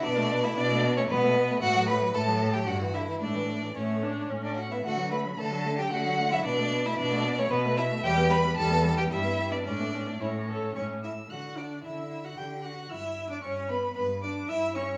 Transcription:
0.03 B2 B3 D4 D5
0.18 A3
0.31 B3
0.43 A3 E4 E5
0.56 B2 B3 D4 D5
0.71 A3
0.84 B3
0.97 A3 C#4 C#5
1.09 B2 B3 B4
1.23 A3
1.37 B3
1.50 A3
1.62 A2 A3 F#4 F#5
1.76 F#3
1.88 A3 B4 B5
2.02 F#3
2.14 A2 A3 A4 A5
2.28 F#3
2.42 A3
2.53 F#3 G4 G5
2.66 G2 D3 F#4 F#5
2.82 E3
2.94 D3 E4 E5
3.08 E3
3.20 A2 A3 D4 D5
3.35 E3
3.49 A3
3.62 E3
3.75 A2 A3 C#4 C#5
4.03 D4
4.30 A2 C#4
4.43 D4 D5
4.56 F#4 F#5
4.71 B3 E4 E5
4.84 D3 A3 F#4 F#5
4.97 F#3
5.11 A3 B4 B5
5.25 F#3
5.37 D3 A3 A4 A5
5.51 F#3
5.64 A3
5.78 F#3 G4 G5
5.90 D3 A3 F#4 F#5
6.05 F#3
6.18 A3
6.31 F#3 E4 E5
6.45 B2 B3 D4 D5
6.58 A3
6.72 B3
6.85 A3 E4 E5
6.99 B2 B3 D4 D5
7.11 A3
7.25 B3
7.38 A3 C#4 C#5
7.51 B2 B3 B4
7.65 A3
7.77 B3 E4 E5
7.91 A3
8.03 E2 G3 G4 G5
8.17 B3
8.30 G3 B4 B5
8.44 B3
8.56 E2 G3 A4 A5
8.71 B3
8.84 G3
8.97 B3 G4 G5
9.10 G2 G3 E4 E5
9.24 B3
9.38 G3
9.51 B3 D4 D5
9.65 A2 C#4 D4 D5
9.80 A3
9.94 C#4
10.07 A3
10.20 A2 C#4 E4 C#5
10.48 A4
10.76 A2 C#4 C#5 C#6
11.03 E4 E5 E6
11.30 D3 F#4 F#5 F#6
11.57 D4 D5 D6
11.84 D3 E4 E5 E6
12.24 F#4 F#5 F#6
12.38 D3 G4 G5 G6
12.63 F#4 F#5 F#6
12.90 G2 E4 E5 E6
13.30 D4 D5 D6
13.42 G2 C#4 C#5 C#6
13.69 B3 B4 B5
13.95 G2 B3 B4 B5
14.22 D4 D5 D6
14.48 G2 E4 E5 E6
14.75 C#4 C#5 C#6

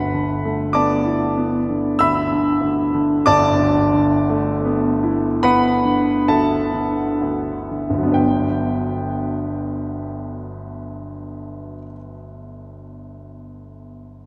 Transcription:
Already playing: G1 D2 B4 F#5 B5
0.14 D3
0.45 A3
0.73 B3 D5 A5 D6
1.05 E4
1.37 B3
1.69 D3
1.99 D2 E5 B5 E6
2.32 D3
2.61 D2
2.94 D3
3.26 G1 D5 A5 D6
3.59 D2
3.93 D3
4.30 A3
4.65 B3
5.03 E4
5.43 B3 B4 F#5 B5
5.85 D3
6.28 D2 A4 E5 A5
6.74 D3
7.22 D2
7.71 D3
7.90 G1
7.94 D2
7.99 F#3
8.03 B3 D4
8.12 B4 G5

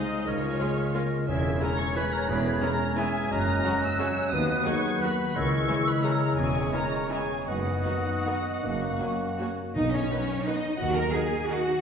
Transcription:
Already playing: C3 G#3 D#4 C5 D#5 D#6
0.26 C#2 C#3 G#3 C#4 F4 A#4 C#5 F6
0.44 G#3
0.59 G#3 C#4 F4 G#4
0.78 G#4
0.94 G#3 C#4 F4 A#4
1.12 G#4
1.28 E1 E2 G#3 C#4 E4 G#4 E5 G#6
1.45 G#3
1.60 E3 G#3 C#4 E4 A#4 C#5 A#5
1.79 C#5 C#6
1.95 E3 G#3 C#4 E4 G#4 B4 B5
2.13 A#4 A#5
2.28 E1 E2 G#4 B4 B5
2.45 G#3
2.62 E3 G#3 C#4 E4 A#4 A#5
2.80 C#5
2.96 E3 G#3 C#4 E4 G#4 E5 G#5
3.15 C#5
3.31 F#1 F#2 C#4 A#4 D#5 A#5 F#6
3.48 F#3
3.65 C#3 F#3 C#4 F#4
3.83 C#5 E5 E6
3.99 C#3 F#3 C#4 F#4 C#5
4.16 C#5
4.32 D#2 D#3 B3 B4 D#5 D#6
4.49 D#4
4.66 D#3 F#3 B3 F#4 G#4 B4 C#5 C#6
4.85 F#4
5.02 D#3 F#3 B3 F#4 B4 D#5 B5
5.19 F#4
5.35 C#2 C#3 G#3 E4 A#4 C#5 C#6 E6
5.52 G#3
5.69 E3 G#3 C#4 E4 G#4
5.87 B4 C#5 B5
6.04 E3 G#3 C#4 E4 G#4 A#4 C#5 A#5
6.38 E1 E2 C#4 G#4 G#5 C#6
6.56 G#3
6.73 E3 G#3 C#4 E4 A#4 A#5
6.92 C#5
7.10 E3 G#3 C#4 E4 G#4 G#5
7.30 C#5
7.47 F#1 F#2 B3 D#4 F#4 D#5 F#5 D#6
7.67 B3
7.86 D#3 B3 D#4 F#4
8.26 D#3 B3 D#4 F#4 B4
8.46 D#5
8.63 F#1 F#2 A#3 C#4 C#6
9.00 F#3 A#3 C#4 F#4
9.20 C#5
9.39 F#3 A#3 C#4 F#4 A#4
9.59 C#5
9.76 B1 B2 D#4 D#5
9.94 F#3 C#4 C#5
10.11 B3 D#4 F#4 B4 F#5
10.30 D#5
10.47 B3 D#4 B4 D#5 F#5
10.65 F#3
10.81 D#2 D#3 F#4 F#5
10.97 D#4 A#4 A#5
11.14 A#3 D#4 F#4 G#4 A#4 F#5 G#5
11.32 D#5
11.49 A#3 D#4 F#4 A#4 F#5
11.68 D#4

